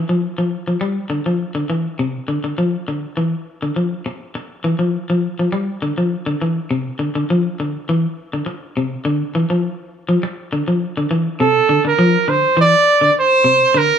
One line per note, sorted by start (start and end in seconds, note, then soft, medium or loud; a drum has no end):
0.09 0.26 F3 medium
0.38 0.55 F3 medium
0.68 0.76 F3 medium
0.81 0.98 G3 medium
1.10 1.19 D3 medium
1.26 1.43 F3 medium
1.55 1.63 D3 medium
1.70 1.87 E3 medium
1.99 2.16 C3 medium
2.28 2.37 D3 medium
2.44 2.52 D3 medium
2.58 2.75 F3 medium
2.88 3.05 D3 medium
3.17 3.34 E3 medium
3.62 3.70 D3 medium
3.76 3.93 F3 medium
4.06 muted clean electric guitar stroke medium
4.35 muted clean electric guitar stroke medium
4.64 4.73 E3 medium
4.79 4.96 F3 medium
5.10 5.27 F3 medium
5.39 5.47 F3 medium
5.52 5.69 G3 medium
5.82 5.91 D3 medium
5.98 6.15 F3 medium
6.26 6.35 D3 medium
6.42 6.58 E3 medium
6.71 6.87 C3 medium
6.99 7.08 D3 medium
7.15 7.23 D3 medium
7.30 7.47 F3 medium
7.60 7.76 D3 medium
7.89 8.06 E3 medium
8.33 8.41 D3 medium
8.46 muted clean electric guitar stroke medium
8.77 8.94 C3 medium
9.05 9.22 D3 medium
9.35 9.44 E3 medium
9.50 9.67 F3 medium
10.09 10.17 F3 medium
10.23 muted clean electric guitar stroke medium
10.53 10.62 D3 medium
10.68 10.85 F3 medium
10.97 11.05 D3 medium
11.11 11.28 E3 medium
11.40 11.57 C3 medium
11.40 11.82 A4 loud
11.69 11.78 D3 medium
11.85 11.93 D3 medium
11.85 12.30 A#4 medium
11.99 12.16 F3 medium
12.28 12.45 D3 medium
12.28 12.58 C5 medium
12.57 12.74 E3 medium
12.57 13.14 D5 loud
13.01 13.10 D3 medium
13.19 13.79 C5 loud
13.44 13.61 C3 medium
13.74 13.91 D3 medium
13.74 13.99 A#4 loud